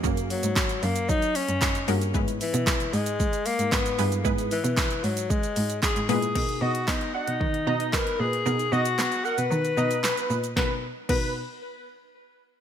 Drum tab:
CC |----------------|----------------|----------------|x---------------|
HH |-xox-xox-xox-xox|-xox-xox-xox-xox|-xox-xox-xox-xox|-x-x-x-x-x-x-x-x|
SH |xxxxxxxxxxxxxxxx|xxxxxxxxxxxxxxxx|xxxxxxxxxxxxxxxx|----------------|
CP |----x-------x---|----x-------x---|----x-------x---|----x-------x---|
SD |----o-------o---|----o-------o---|----o-------o---|----o-------o---|
BD |o---o---o---o---|o---o---o---o---|o---o---o---o---|o---o---o---o---|

CC |----------------|----x-----------|
HH |-x-x-x-x-x-x-x-x|----------------|
SH |xxxxxxxxxxxxxxxx|----------------|
CP |----x-------x---|----------------|
SD |----o-------o---|o---------------|
BD |----------------|o---o-----------|